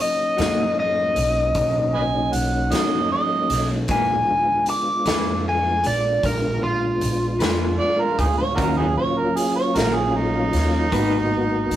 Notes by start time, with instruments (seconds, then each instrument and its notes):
Already playing: tonewheel organ F#3 A#3 C#4 D#4
0.02 overdriven electric guitar D#5
0.37 upright bass F#2, clean electric guitar B2 A#3 D#4 F#4, snare, closed hi-hat
0.80 overdriven electric guitar D#5
1.16 upright bass B1, closed hi-hat
1.55 upright bass B1, kick, closed hi-hat
1.94 harmonica B4 D#5 G#5
2.32 upright bass B1, harmonica F#5, closed hi-hat
2.71 upright bass F#2, clean electric guitar B2 A#3 D#4 F#4, harmonica D#5, snare, closed hi-hat
3.12 harmonica D#5
3.50 upright bass B1, snare, closed hi-hat
3.88 upright bass A#1, tonewheel organ G#3 B3 D4 F4, clean electric guitar A#3 D4 G#4 B4, overdriven electric guitar G#5, kick, closed hi-hat
4.66 overdriven electric guitar D6, closed hi-hat
5.06 upright bass F2, clean electric guitar A#3 D4 G#4 B4, snare, closed hi-hat
5.49 overdriven electric guitar G#5
5.84 upright bass A#1, overdriven electric guitar D5, closed hi-hat
6.23 upright bass A#1, overdriven electric guitar A#4, kick, closed hi-hat
6.63 overdriven electric guitar F4
7.01 upright bass A#1, closed hi-hat
7.39 upright bass F2, clean electric guitar A#3 D4 G#4 B4, snare, closed hi-hat
7.79 harmonica D5
8.01 harmonica A#4
8.19 upright bass D2, harmonica B3 D#4 G#4, kick, closed hi-hat
8.38 harmonica C#5
8.55 upright bass D#2, clean electric guitar D#3 A#3 C#4 F#4, tonewheel organ F#3 A#3 C#4 F4, harmonica D4 F#4 A#4, kick, closed hi-hat
8.77 harmonica B3 D#4 G#4
8.97 harmonica C#5
9.18 harmonica A#4
9.36 harmonica G#4, closed hi-hat
9.56 harmonica C#5
9.76 upright bass A#1, clean electric guitar D#3 A#3 C#4 F#4, harmonica A#4, snare, closed hi-hat
9.95 harmonica G#4
10.15 harmonica D#4
10.53 upright bass D#2, snare, closed hi-hat
10.91 upright bass G#1, clean electric guitar G#3 D#4 F#4 B4, tonewheel organ A#3 B3 D#4 F#4, kick, closed hi-hat
11.71 upright bass G#1, closed hi-hat